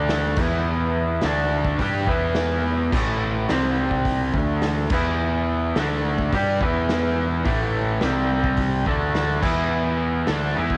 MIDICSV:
0, 0, Header, 1, 4, 480
1, 0, Start_track
1, 0, Tempo, 566038
1, 559, Time_signature, 4, 2, 24, 8
1, 9134, End_track
2, 0, Start_track
2, 0, Title_t, "Overdriven electric guitar"
2, 0, Program_c, 0, 29
2, 0, Note_on_c, 0, 50, 78
2, 0, Note_on_c, 0, 57, 99
2, 0, Note_on_c, 0, 62, 96
2, 330, Note_off_c, 0, 50, 0
2, 330, Note_on_c, 0, 52, 85
2, 339, Note_off_c, 0, 62, 0
2, 339, Note_on_c, 0, 64, 88
2, 341, Note_off_c, 0, 57, 0
2, 341, Note_on_c, 0, 59, 89
2, 1038, Note_off_c, 0, 52, 0
2, 1042, Note_on_c, 0, 50, 93
2, 1043, Note_off_c, 0, 64, 0
2, 1044, Note_off_c, 0, 59, 0
2, 1054, Note_on_c, 0, 57, 92
2, 1057, Note_on_c, 0, 62, 102
2, 1512, Note_off_c, 0, 57, 0
2, 1514, Note_off_c, 0, 50, 0
2, 1515, Note_on_c, 0, 55, 109
2, 1519, Note_off_c, 0, 62, 0
2, 1530, Note_on_c, 0, 62, 105
2, 1535, Note_on_c, 0, 67, 117
2, 1751, Note_off_c, 0, 55, 0
2, 1753, Note_on_c, 0, 52, 88
2, 1758, Note_off_c, 0, 62, 0
2, 1760, Note_off_c, 0, 67, 0
2, 1761, Note_on_c, 0, 59, 94
2, 1767, Note_on_c, 0, 64, 95
2, 2470, Note_off_c, 0, 52, 0
2, 2474, Note_off_c, 0, 59, 0
2, 2477, Note_off_c, 0, 64, 0
2, 2477, Note_on_c, 0, 45, 83
2, 2482, Note_on_c, 0, 52, 92
2, 2492, Note_on_c, 0, 57, 86
2, 2952, Note_off_c, 0, 45, 0
2, 2954, Note_off_c, 0, 52, 0
2, 2957, Note_on_c, 0, 48, 91
2, 2959, Note_off_c, 0, 57, 0
2, 2969, Note_on_c, 0, 55, 101
2, 2977, Note_on_c, 0, 60, 110
2, 3691, Note_off_c, 0, 48, 0
2, 3691, Note_on_c, 0, 50, 85
2, 3692, Note_off_c, 0, 55, 0
2, 3692, Note_on_c, 0, 57, 98
2, 3699, Note_off_c, 0, 60, 0
2, 3699, Note_on_c, 0, 62, 90
2, 4159, Note_off_c, 0, 50, 0
2, 4159, Note_off_c, 0, 57, 0
2, 4163, Note_off_c, 0, 62, 0
2, 4168, Note_on_c, 0, 52, 84
2, 4172, Note_on_c, 0, 59, 99
2, 4182, Note_on_c, 0, 64, 87
2, 4877, Note_off_c, 0, 52, 0
2, 4879, Note_off_c, 0, 59, 0
2, 4884, Note_off_c, 0, 64, 0
2, 4889, Note_on_c, 0, 50, 97
2, 4897, Note_on_c, 0, 57, 99
2, 4902, Note_on_c, 0, 62, 110
2, 5358, Note_off_c, 0, 50, 0
2, 5361, Note_off_c, 0, 57, 0
2, 5364, Note_off_c, 0, 62, 0
2, 5369, Note_on_c, 0, 55, 103
2, 5375, Note_on_c, 0, 62, 107
2, 5381, Note_on_c, 0, 67, 118
2, 5597, Note_off_c, 0, 55, 0
2, 5600, Note_off_c, 0, 62, 0
2, 5601, Note_on_c, 0, 52, 85
2, 5603, Note_off_c, 0, 67, 0
2, 5612, Note_on_c, 0, 59, 104
2, 5616, Note_on_c, 0, 64, 90
2, 6313, Note_off_c, 0, 52, 0
2, 6318, Note_off_c, 0, 59, 0
2, 6320, Note_off_c, 0, 64, 0
2, 6320, Note_on_c, 0, 45, 87
2, 6324, Note_on_c, 0, 52, 96
2, 6332, Note_on_c, 0, 57, 107
2, 6792, Note_off_c, 0, 45, 0
2, 6794, Note_off_c, 0, 52, 0
2, 6798, Note_off_c, 0, 57, 0
2, 6805, Note_on_c, 0, 48, 95
2, 6810, Note_on_c, 0, 55, 106
2, 6817, Note_on_c, 0, 60, 103
2, 7509, Note_off_c, 0, 48, 0
2, 7512, Note_on_c, 0, 50, 88
2, 7516, Note_off_c, 0, 55, 0
2, 7520, Note_off_c, 0, 60, 0
2, 7521, Note_on_c, 0, 57, 91
2, 7528, Note_on_c, 0, 62, 103
2, 7980, Note_off_c, 0, 50, 0
2, 7984, Note_on_c, 0, 52, 78
2, 7992, Note_off_c, 0, 57, 0
2, 7994, Note_off_c, 0, 62, 0
2, 7998, Note_on_c, 0, 59, 95
2, 7998, Note_on_c, 0, 64, 98
2, 8703, Note_off_c, 0, 52, 0
2, 8707, Note_on_c, 0, 50, 96
2, 8710, Note_off_c, 0, 59, 0
2, 8710, Note_off_c, 0, 64, 0
2, 8714, Note_on_c, 0, 57, 95
2, 8715, Note_on_c, 0, 62, 116
2, 8945, Note_off_c, 0, 50, 0
2, 8948, Note_off_c, 0, 57, 0
2, 8948, Note_off_c, 0, 62, 0
2, 8949, Note_on_c, 0, 52, 84
2, 8956, Note_on_c, 0, 59, 99
2, 8963, Note_on_c, 0, 64, 99
2, 9134, Note_off_c, 0, 52, 0
2, 9134, Note_off_c, 0, 59, 0
2, 9134, Note_off_c, 0, 64, 0
2, 9134, End_track
3, 0, Start_track
3, 0, Title_t, "Picked electric bass"
3, 0, Program_c, 1, 34
3, 0, Note_on_c, 1, 38, 89
3, 284, Note_off_c, 1, 38, 0
3, 315, Note_on_c, 1, 40, 91
3, 1004, Note_off_c, 1, 40, 0
3, 1046, Note_on_c, 1, 38, 94
3, 1490, Note_off_c, 1, 38, 0
3, 1518, Note_on_c, 1, 43, 98
3, 1742, Note_off_c, 1, 43, 0
3, 1756, Note_on_c, 1, 40, 91
3, 2445, Note_off_c, 1, 40, 0
3, 2479, Note_on_c, 1, 33, 94
3, 2926, Note_off_c, 1, 33, 0
3, 2963, Note_on_c, 1, 36, 94
3, 3648, Note_off_c, 1, 36, 0
3, 3677, Note_on_c, 1, 38, 92
3, 4125, Note_off_c, 1, 38, 0
3, 4162, Note_on_c, 1, 40, 89
3, 4847, Note_off_c, 1, 40, 0
3, 4885, Note_on_c, 1, 38, 90
3, 5329, Note_off_c, 1, 38, 0
3, 5368, Note_on_c, 1, 43, 89
3, 5587, Note_off_c, 1, 43, 0
3, 5605, Note_on_c, 1, 40, 100
3, 6288, Note_off_c, 1, 40, 0
3, 6320, Note_on_c, 1, 33, 93
3, 6766, Note_off_c, 1, 33, 0
3, 6802, Note_on_c, 1, 36, 103
3, 7486, Note_off_c, 1, 36, 0
3, 7517, Note_on_c, 1, 38, 83
3, 7963, Note_off_c, 1, 38, 0
3, 7993, Note_on_c, 1, 40, 87
3, 8681, Note_off_c, 1, 40, 0
3, 8718, Note_on_c, 1, 38, 94
3, 8940, Note_off_c, 1, 38, 0
3, 8970, Note_on_c, 1, 40, 95
3, 9134, Note_off_c, 1, 40, 0
3, 9134, End_track
4, 0, Start_track
4, 0, Title_t, "Drums"
4, 76, Note_on_c, 9, 46, 65
4, 78, Note_on_c, 9, 38, 102
4, 161, Note_off_c, 9, 46, 0
4, 162, Note_off_c, 9, 38, 0
4, 309, Note_on_c, 9, 49, 100
4, 314, Note_on_c, 9, 36, 111
4, 393, Note_off_c, 9, 49, 0
4, 399, Note_off_c, 9, 36, 0
4, 1030, Note_on_c, 9, 46, 63
4, 1032, Note_on_c, 9, 38, 113
4, 1115, Note_off_c, 9, 46, 0
4, 1116, Note_off_c, 9, 38, 0
4, 1396, Note_on_c, 9, 36, 90
4, 1480, Note_off_c, 9, 36, 0
4, 1519, Note_on_c, 9, 36, 105
4, 1522, Note_on_c, 9, 46, 61
4, 1604, Note_off_c, 9, 36, 0
4, 1607, Note_off_c, 9, 46, 0
4, 1756, Note_on_c, 9, 36, 94
4, 1841, Note_off_c, 9, 36, 0
4, 1990, Note_on_c, 9, 46, 55
4, 1991, Note_on_c, 9, 38, 102
4, 2075, Note_off_c, 9, 46, 0
4, 2076, Note_off_c, 9, 38, 0
4, 2480, Note_on_c, 9, 36, 125
4, 2483, Note_on_c, 9, 49, 108
4, 2565, Note_off_c, 9, 36, 0
4, 2567, Note_off_c, 9, 49, 0
4, 2959, Note_on_c, 9, 46, 59
4, 2961, Note_on_c, 9, 38, 104
4, 3044, Note_off_c, 9, 46, 0
4, 3045, Note_off_c, 9, 38, 0
4, 3314, Note_on_c, 9, 36, 87
4, 3399, Note_off_c, 9, 36, 0
4, 3436, Note_on_c, 9, 36, 98
4, 3437, Note_on_c, 9, 46, 67
4, 3520, Note_off_c, 9, 36, 0
4, 3521, Note_off_c, 9, 46, 0
4, 3676, Note_on_c, 9, 36, 88
4, 3761, Note_off_c, 9, 36, 0
4, 3915, Note_on_c, 9, 46, 62
4, 3917, Note_on_c, 9, 38, 106
4, 4000, Note_off_c, 9, 46, 0
4, 4002, Note_off_c, 9, 38, 0
4, 4153, Note_on_c, 9, 49, 100
4, 4158, Note_on_c, 9, 36, 110
4, 4238, Note_off_c, 9, 49, 0
4, 4243, Note_off_c, 9, 36, 0
4, 4883, Note_on_c, 9, 46, 63
4, 4884, Note_on_c, 9, 38, 112
4, 4967, Note_off_c, 9, 46, 0
4, 4969, Note_off_c, 9, 38, 0
4, 5245, Note_on_c, 9, 36, 82
4, 5330, Note_off_c, 9, 36, 0
4, 5365, Note_on_c, 9, 36, 100
4, 5367, Note_on_c, 9, 46, 63
4, 5449, Note_off_c, 9, 36, 0
4, 5452, Note_off_c, 9, 46, 0
4, 5604, Note_on_c, 9, 36, 97
4, 5688, Note_off_c, 9, 36, 0
4, 5844, Note_on_c, 9, 46, 53
4, 5845, Note_on_c, 9, 38, 99
4, 5929, Note_off_c, 9, 46, 0
4, 5930, Note_off_c, 9, 38, 0
4, 6318, Note_on_c, 9, 46, 62
4, 6323, Note_on_c, 9, 36, 116
4, 6403, Note_off_c, 9, 46, 0
4, 6407, Note_off_c, 9, 36, 0
4, 6793, Note_on_c, 9, 46, 56
4, 6794, Note_on_c, 9, 38, 113
4, 6877, Note_off_c, 9, 46, 0
4, 6879, Note_off_c, 9, 38, 0
4, 7157, Note_on_c, 9, 36, 86
4, 7242, Note_off_c, 9, 36, 0
4, 7267, Note_on_c, 9, 46, 64
4, 7275, Note_on_c, 9, 36, 95
4, 7352, Note_off_c, 9, 46, 0
4, 7360, Note_off_c, 9, 36, 0
4, 7517, Note_on_c, 9, 36, 89
4, 7602, Note_off_c, 9, 36, 0
4, 7759, Note_on_c, 9, 46, 59
4, 7760, Note_on_c, 9, 38, 102
4, 7844, Note_off_c, 9, 46, 0
4, 7845, Note_off_c, 9, 38, 0
4, 7994, Note_on_c, 9, 36, 107
4, 7995, Note_on_c, 9, 49, 109
4, 8079, Note_off_c, 9, 36, 0
4, 8080, Note_off_c, 9, 49, 0
4, 8708, Note_on_c, 9, 46, 59
4, 8709, Note_on_c, 9, 38, 108
4, 8792, Note_off_c, 9, 46, 0
4, 8794, Note_off_c, 9, 38, 0
4, 9074, Note_on_c, 9, 36, 82
4, 9134, Note_off_c, 9, 36, 0
4, 9134, End_track
0, 0, End_of_file